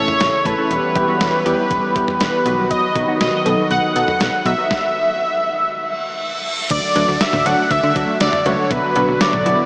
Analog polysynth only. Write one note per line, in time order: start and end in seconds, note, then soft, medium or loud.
0.00 0.12 A3 medium
0.00 0.12 C#4 medium
0.00 0.12 E4 medium
0.00 0.12 A4 medium
0.46 0.54 A3 medium
0.46 0.54 C#4 medium
0.46 0.54 E4 medium
0.46 0.54 A4 medium
0.58 0.71 A3 medium
0.58 0.71 C#4 medium
0.58 0.71 E4 medium
0.58 0.71 A4 medium
0.96 1.04 G3 medium
0.96 1.04 B3 medium
0.96 1.04 E4 medium
0.96 1.04 G4 medium
1.08 1.25 G3 medium
1.08 1.25 B3 medium
1.08 1.25 E4 medium
1.08 1.25 F#4 medium
1.46 1.62 G3 medium
1.46 1.62 B3 medium
1.46 1.62 E4 medium
1.46 1.62 G4 loud
1.96 2.12 G3 medium
1.96 2.12 B3 medium
1.96 2.12 E4 medium
1.96 2.12 G4 loud
2.46 2.86 F#3 medium
2.46 2.86 B3 medium
2.46 2.86 D#4 medium
2.46 2.86 F#4 medium
2.96 3.04 F#3 medium
2.96 3.04 B3 medium
2.96 3.04 D#4 medium
2.96 3.04 F#4 medium
3.08 3.25 F#3 medium
3.08 3.25 B3 medium
3.08 3.25 D#4 medium
3.08 3.25 F#4 medium
3.46 3.62 F#3 medium
3.46 3.62 B3 medium
3.46 3.62 D#4 medium
3.46 3.62 A4 medium
3.96 4.12 F#3 medium
3.96 4.12 B3 medium
3.96 4.12 D#4 medium
3.96 4.12 A4 medium
4.46 4.54 F#3 medium
4.46 4.54 B3 medium
4.46 4.54 D#4 medium
4.46 4.54 F#4 medium
4.58 4.71 F#3 medium
4.58 4.71 B3 medium
4.58 4.71 D#4 medium
4.58 4.71 F#4 medium
6.96 7.12 F#3 medium
6.96 7.12 A3 medium
6.96 7.12 D4 medium
6.96 7.12 F#4 medium
7.46 7.63 F#3 medium
7.46 7.63 A3 medium
7.46 7.62 D4 medium
7.46 7.62 F#4 medium
7.96 8.13 F#3 medium
7.96 8.12 A3 medium
7.96 8.12 D4 medium
7.96 8.13 F#4 medium
8.46 8.62 F#3 medium
8.46 8.62 A3 medium
8.46 8.62 D4 medium
8.46 8.62 F#4 medium
8.96 9.12 F#3 medium
8.96 9.12 B3 medium
8.96 9.12 D4 medium
8.96 9.12 F#4 medium
9.46 9.62 F#3 medium
9.46 9.62 B3 medium
9.46 9.62 D4 medium
9.46 9.62 E4 medium